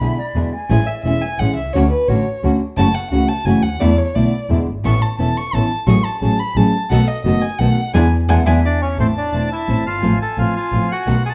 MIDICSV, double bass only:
0, 0, Header, 1, 2, 480
1, 0, Start_track
1, 0, Key_signature, 3, "major"
1, 0, Tempo, 345821
1, 969, Time_signature, 3, 2, 24, 8
1, 15745, End_track
2, 0, Start_track
2, 0, Title_t, "Double bass"
2, 0, Program_c, 0, 43
2, 3, Note_on_c, 0, 35, 57
2, 205, Note_off_c, 0, 35, 0
2, 480, Note_on_c, 0, 40, 53
2, 687, Note_off_c, 0, 40, 0
2, 968, Note_on_c, 0, 33, 89
2, 1171, Note_off_c, 0, 33, 0
2, 1448, Note_on_c, 0, 28, 61
2, 1652, Note_off_c, 0, 28, 0
2, 1925, Note_on_c, 0, 33, 66
2, 2130, Note_off_c, 0, 33, 0
2, 2169, Note_on_c, 0, 36, 55
2, 2411, Note_off_c, 0, 36, 0
2, 2417, Note_on_c, 0, 38, 92
2, 2616, Note_off_c, 0, 38, 0
2, 2900, Note_on_c, 0, 33, 65
2, 3096, Note_off_c, 0, 33, 0
2, 3377, Note_on_c, 0, 38, 64
2, 3574, Note_off_c, 0, 38, 0
2, 3853, Note_on_c, 0, 30, 89
2, 4050, Note_off_c, 0, 30, 0
2, 4320, Note_on_c, 0, 37, 68
2, 4521, Note_off_c, 0, 37, 0
2, 4797, Note_on_c, 0, 30, 68
2, 4998, Note_off_c, 0, 30, 0
2, 5041, Note_on_c, 0, 38, 63
2, 5275, Note_off_c, 0, 38, 0
2, 5283, Note_on_c, 0, 40, 92
2, 5481, Note_off_c, 0, 40, 0
2, 5756, Note_on_c, 0, 35, 63
2, 5957, Note_off_c, 0, 35, 0
2, 6238, Note_on_c, 0, 40, 65
2, 6439, Note_off_c, 0, 40, 0
2, 6480, Note_on_c, 0, 31, 53
2, 6707, Note_off_c, 0, 31, 0
2, 6715, Note_on_c, 0, 33, 89
2, 6919, Note_off_c, 0, 33, 0
2, 7206, Note_on_c, 0, 28, 60
2, 7404, Note_off_c, 0, 28, 0
2, 7688, Note_on_c, 0, 33, 65
2, 7884, Note_off_c, 0, 33, 0
2, 8151, Note_on_c, 0, 33, 95
2, 8353, Note_off_c, 0, 33, 0
2, 8631, Note_on_c, 0, 33, 65
2, 8833, Note_off_c, 0, 33, 0
2, 9099, Note_on_c, 0, 33, 66
2, 9306, Note_off_c, 0, 33, 0
2, 9583, Note_on_c, 0, 35, 94
2, 9787, Note_off_c, 0, 35, 0
2, 10063, Note_on_c, 0, 30, 68
2, 10266, Note_off_c, 0, 30, 0
2, 10547, Note_on_c, 0, 35, 72
2, 10747, Note_off_c, 0, 35, 0
2, 11024, Note_on_c, 0, 40, 97
2, 11203, Note_off_c, 0, 40, 0
2, 11496, Note_on_c, 0, 40, 99
2, 11679, Note_off_c, 0, 40, 0
2, 11739, Note_on_c, 0, 40, 92
2, 11922, Note_off_c, 0, 40, 0
2, 12460, Note_on_c, 0, 33, 71
2, 12669, Note_off_c, 0, 33, 0
2, 12953, Note_on_c, 0, 28, 46
2, 13157, Note_off_c, 0, 28, 0
2, 13445, Note_on_c, 0, 33, 49
2, 13643, Note_off_c, 0, 33, 0
2, 13685, Note_on_c, 0, 31, 45
2, 13913, Note_off_c, 0, 31, 0
2, 13921, Note_on_c, 0, 33, 73
2, 14122, Note_off_c, 0, 33, 0
2, 14406, Note_on_c, 0, 33, 53
2, 14605, Note_off_c, 0, 33, 0
2, 14882, Note_on_c, 0, 33, 51
2, 15083, Note_off_c, 0, 33, 0
2, 15357, Note_on_c, 0, 35, 76
2, 15560, Note_off_c, 0, 35, 0
2, 15745, End_track
0, 0, End_of_file